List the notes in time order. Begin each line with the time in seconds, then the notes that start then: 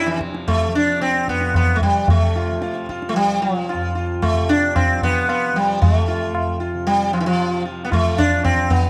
Already playing: F2 C3 F3
0.06 E3 F3, tabla te
0.21 tabla ke
0.35 tabla te
0.48 A3, tabla na, tabla ge
0.68 F3
0.75 D4, tabla te
1.01 C4, tabla te
1.15 tabla te
1.28 F2 B3, tabla ke
1.41 tabla te
1.54 B3, tabla na, tabla ge
1.76 A3
1.81 G3, tabla ge
1.91 C3
2.08 A3, tabla tin, tabla ge
2.36 F4
2.51 F3
2.62 F4, tabla te
2.75 tabla te
2.89 F4, tabla ke
3.02 tabla te
3.09 F3 A3
3.16 G3, tabla tin
3.42 F3
3.69 F4, tabla na
3.74 F2
3.95 F4
4.22 A3, tabla na, tabla ge
4.32 C3
4.49 D4
4.76 C4, tabla na, tabla ge
4.92 F3
5.02 B3, tabla ge
5.29 B3, tabla na
5.53 F3 G3
5.82 A3, tabla tin, tabla ge
6.08 F4
6.13 F2
6.35 tabla na
6.60 F4
6.74 C3
6.87 G3, tabla tin
7.13 F3, tabla na
7.20 E3
7.26 F3
7.33 F3
7.40 tabla na
7.65 F4
7.85 B3
7.91 F3 A3 F4, tabla na, tabla ge
8.17 D4 F4, tabla ge
8.44 C4, tabla na, tabla ge
8.52 F2
8.70 B3, tabla ge